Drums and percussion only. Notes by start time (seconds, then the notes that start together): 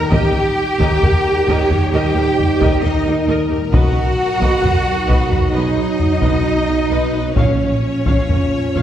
0.12 taiko
0.80 taiko
1.03 taiko low
1.48 taiko
1.70 taiko low
2.39 taiko low
2.61 taiko
3.74 taiko
4.42 taiko
4.64 taiko low
5.10 taiko
5.31 taiko low
5.99 taiko low
6.22 taiko
7.36 taiko
8.06 taiko
8.29 taiko low
8.76 taiko